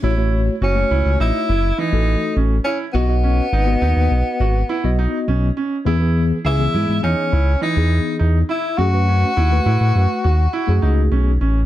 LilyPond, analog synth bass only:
\new Staff \with { instrumentName = "Analog synth bass" } { \clef bass \time 5/4 \key a \lydian \tempo 4 = 103 a,,4 fis,,8 cis,16 cis,16 a,,16 r16 fis,,8 r16 a,,8 r16 a,,8 r8 | b,,4 gis,,8 dis,16 dis,16 b,,16 r16 gis,,8 r16 b,,8 r16 b,,8 r8 | e,4 cis,8 gis,16 gis,16 e,16 r16 cis,8 r16 e,8 r16 e,8 r8 | fis,4 dis,8 a,16 a,16 fis,16 r16 dis,8 r16 fis,16 cis,8 b,,8 a,,8 | }